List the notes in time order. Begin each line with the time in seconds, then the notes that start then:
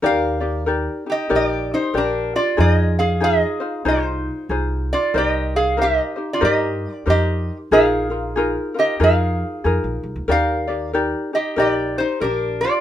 0.02 D#2 D#4 G4 A#4 D5 F5
0.40 D#4 G4 D5
0.66 D#4 G4 A#4 D5
1.06 D#4 G4
1.12 D#5
1.29 A#1 D#4 G4 A#4 D5
1.35 G4 D5
1.74 D#4 C5
1.94 A#1 D4 G4 A#4 D5
1.98 A#4
2.36 F4 D5
2.57 F2 D#4 F4 G#4 C5 D#5
2.99 G#4 F5
3.20 D#4 F4 G#4 C5 D#5
3.60 D#4 F4 C5
3.85 C2 D#4 F4 G#4 C5
3.90 D#4
4.49 C2 D#4 F4 G#4 C5
4.93 F4 D5
5.14 C2 D#4 A#4 C5 D#5
5.19 G4
5.56 G#4 F5
5.77 D#4 G4 A#4 C5
5.82 G4 E5
5.99 D#5
6.16 D#4 G4 C5
6.33 F4 D5
6.41 G2 D#4 G4 A#4 C5 D#5
6.46 G4
6.91 D5
7.06 F2 D#4 G4 A#4 C5
7.10 G4 D#5
7.71 A#1 D#4 F4 G#4 A#4 F5
8.10 D#4 F4 A#4
8.36 D#4 F4 G#4 A#4
8.74 D#4 F4 A#4
8.79 G4 D#5
9.00 F2 D#4 F4 G#4 A#4
9.04 F5
9.64 F2 D#4 F4 G#4 A#4
9.84 A#1
10.03 C2
10.16 D2
10.28 D#2 D#4 G4 A#4 D5 F5
10.68 D#4 G4 D5
10.93 D#4 G4 A#4 D5
11.33 D#4 G4 D#5
11.56 A#1 D#4 G4 A#4 D5
11.62 G4
11.98 D#4 C5
12.20 A#1 D4 G4 A#4 D5
12.61 F4 D5